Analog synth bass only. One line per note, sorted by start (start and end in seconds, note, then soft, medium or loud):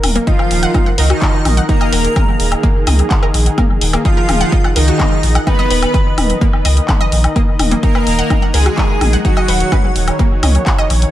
0.04 0.18 D#1 loud
0.51 0.65 D#1 medium
0.98 1.12 C#2 medium
1.45 1.60 A#1 loud
1.92 2.07 D#1 loud
2.40 2.54 D#1 medium
2.87 3.01 C#2 medium
3.34 3.49 A#1 medium
3.81 3.96 D#1 loud
4.29 4.43 D#1 medium
4.76 4.90 C#2 medium
5.23 5.38 A#1 loud
5.70 5.85 D#1 loud
6.18 6.32 D#1 medium
6.65 6.79 C#2 medium
7.12 7.27 A#1 loud
7.60 7.74 D#1 loud
8.07 8.21 D#1 medium
8.54 8.68 C#2 medium
9.01 9.16 A#1 loud
9.48 9.63 D#1 loud
9.96 10.10 D#1 medium
10.43 10.57 C#2 medium
10.90 11.04 A#1 loud